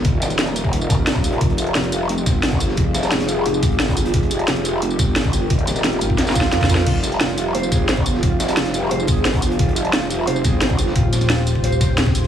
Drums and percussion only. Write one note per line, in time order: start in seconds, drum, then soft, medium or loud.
0.05 kick loud
0.05 closed hi-hat medium
0.22 snare medium
0.22 closed hi-hat medium
0.22 tambourine medium
0.30 snare soft
0.30 closed hi-hat soft
0.30 tambourine soft
0.38 snare loud
0.38 closed hi-hat medium
0.47 closed hi-hat soft
0.56 closed hi-hat medium
0.56 tambourine medium
0.64 kick medium
0.73 closed hi-hat medium
0.81 tambourine soft
0.90 kick loud
0.90 snare soft
0.90 closed hi-hat medium
0.90 tambourine medium
1.07 snare loud
1.07 closed hi-hat medium
1.15 kick loud
1.15 snare medium
1.24 closed hi-hat medium
1.24 open hi-hat medium
1.24 tambourine medium
1.32 closed hi-hat soft
1.41 kick loud
1.41 closed hi-hat medium
1.50 closed hi-hat soft
1.58 closed hi-hat medium
1.58 tambourine medium
1.67 closed hi-hat soft
1.75 snare loud
1.75 closed hi-hat medium
1.75 closed hi-hat loud
1.77 snare loud
1.84 closed hi-hat soft
1.92 closed hi-hat medium
1.92 tambourine medium
2.09 closed hi-hat medium
2.18 tambourine soft
2.26 kick loud
2.26 snare soft
2.26 closed hi-hat medium
2.26 tambourine medium
2.43 snare loud
2.43 closed hi-hat medium
2.52 kick loud
2.60 closed hi-hat medium
2.60 open hi-hat medium
2.60 tambourine medium
2.68 snare medium
2.77 kick loud
2.77 closed hi-hat medium
2.94 snare loud
2.94 closed hi-hat medium
2.94 tambourine medium
3.03 snare loud
3.03 closed hi-hat medium
3.03 closed hi-hat soft
3.03 tambourine soft
3.11 snare loud
3.11 closed hi-hat medium
3.20 snare loud
3.20 closed hi-hat soft
3.20 closed hi-hat medium
3.28 closed hi-hat medium
3.28 tambourine medium
3.46 closed hi-hat medium
3.54 tambourine soft
3.63 kick loud
3.63 closed hi-hat medium
3.63 tambourine medium
3.72 closed hi-hat soft
3.80 snare loud
3.80 closed hi-hat medium
3.88 kick loud
3.88 closed hi-hat medium
3.97 closed hi-hat soft
3.97 open hi-hat medium
3.97 tambourine medium
4.06 closed hi-hat medium
4.14 kick loud
4.14 closed hi-hat medium
4.23 closed hi-hat soft
4.31 closed hi-hat medium
4.31 tambourine medium
4.39 closed hi-hat soft
4.48 snare loud
4.48 closed hi-hat medium
4.56 closed hi-hat soft
4.65 closed hi-hat medium
4.65 tambourine medium
4.82 closed hi-hat medium
4.90 tambourine soft
4.99 kick loud
4.99 snare soft
4.99 closed hi-hat medium
4.99 tambourine medium
5.16 snare loud
5.16 closed hi-hat medium
5.25 kick loud
5.33 open hi-hat medium
5.33 tambourine medium
5.50 kick loud
5.50 closed hi-hat loud
5.50 closed hi-hat medium
5.59 closed hi-hat soft
5.67 snare medium
5.67 closed hi-hat medium
5.67 tambourine medium
5.76 snare soft
5.76 closed hi-hat soft
5.76 tambourine soft
5.84 snare loud
5.84 closed hi-hat loud
5.84 closed hi-hat medium
5.93 closed hi-hat soft
6.01 closed hi-hat medium
6.01 tambourine medium
6.10 kick medium
6.18 snare medium
6.18 snare loud
6.18 closed hi-hat medium
6.18 closed hi-hat loud
6.27 snare medium
6.27 closed hi-hat medium
6.27 tambourine soft
6.30 snare medium
6.30 snare loud
6.30 closed hi-hat medium
6.35 kick loud
6.35 snare loud
6.35 closed hi-hat medium
6.35 tambourine medium
6.41 snare medium
6.41 closed hi-hat soft
6.52 snare loud
6.52 snare medium
6.52 closed hi-hat medium
6.60 kick loud
6.60 snare loud
6.60 closed hi-hat medium
6.64 snare loud
6.69 kick medium
6.69 snare loud
6.69 closed hi-hat medium
6.69 open hi-hat medium
6.69 tambourine medium
6.75 snare loud
6.78 snare loud
6.78 closed hi-hat medium
6.87 kick loud
6.87 closed hi-hat loud
6.87 closed hi-hat medium
6.87 crash medium
6.95 closed hi-hat soft
7.03 closed hi-hat medium
7.03 tambourine medium
7.12 closed hi-hat soft
7.20 snare loud
7.20 closed hi-hat loud
7.29 closed hi-hat soft
7.37 closed hi-hat medium
7.37 tambourine medium
7.55 closed hi-hat loud
7.55 closed hi-hat medium
7.63 tambourine soft
7.72 kick loud
7.72 snare soft
7.72 closed hi-hat medium
7.72 tambourine medium
7.88 snare loud
7.88 closed hi-hat medium
7.88 closed hi-hat loud
7.97 kick loud
8.06 closed hi-hat medium
8.06 open hi-hat medium
8.06 tambourine medium
8.15 snare soft
8.23 kick loud
8.23 closed hi-hat loud
8.23 closed hi-hat medium
8.40 snare loud
8.40 closed hi-hat medium
8.40 tambourine medium
8.48 snare loud
8.48 closed hi-hat soft
8.48 closed hi-hat medium
8.48 tambourine soft
8.57 snare loud
8.57 closed hi-hat loud
8.57 closed hi-hat medium
8.65 snare loud
8.65 closed hi-hat medium
8.65 closed hi-hat soft
8.74 closed hi-hat medium
8.74 tambourine medium
8.91 closed hi-hat medium
9.00 tambourine soft
9.07 kick loud
9.07 closed hi-hat medium
9.07 tambourine medium
9.16 closed hi-hat soft
9.25 snare loud
9.25 closed hi-hat loud
9.25 closed hi-hat medium
9.34 kick loud
9.34 closed hi-hat medium
9.42 closed hi-hat soft
9.42 open hi-hat medium
9.42 tambourine medium
9.51 closed hi-hat medium
9.59 kick loud
9.59 closed hi-hat medium
9.69 closed hi-hat soft
9.76 closed hi-hat medium
9.76 tambourine medium
9.85 closed hi-hat soft
9.93 snare loud
9.93 closed hi-hat loud
9.93 closed hi-hat medium
10.02 closed hi-hat soft
10.10 closed hi-hat medium
10.10 tambourine medium
10.27 closed hi-hat medium
10.27 closed hi-hat loud
10.36 tambourine soft
10.44 kick loud
10.44 snare soft
10.44 closed hi-hat medium
10.44 tambourine medium
10.61 snare loud
10.61 closed hi-hat loud
10.70 kick loud
10.78 closed hi-hat medium
10.78 open hi-hat medium
10.78 tambourine medium
10.87 snare medium
10.96 kick loud
10.96 closed hi-hat loud
10.96 closed hi-hat medium
11.13 snare medium
11.13 closed hi-hat medium
11.13 tambourine medium
11.21 snare soft
11.21 closed hi-hat soft
11.21 tambourine soft
11.29 snare loud
11.29 closed hi-hat medium
11.38 closed hi-hat soft
11.47 closed hi-hat medium
11.47 tambourine medium
11.55 kick medium
11.64 closed hi-hat medium
11.72 tambourine soft
11.81 kick loud
11.81 snare soft
11.81 closed hi-hat medium
11.81 tambourine medium
11.97 snare loud
11.97 closed hi-hat medium
11.97 closed hi-hat loud
12.06 kick loud
12.06 snare medium
12.15 closed hi-hat medium
12.15 open hi-hat medium
12.15 tambourine medium
12.24 closed hi-hat soft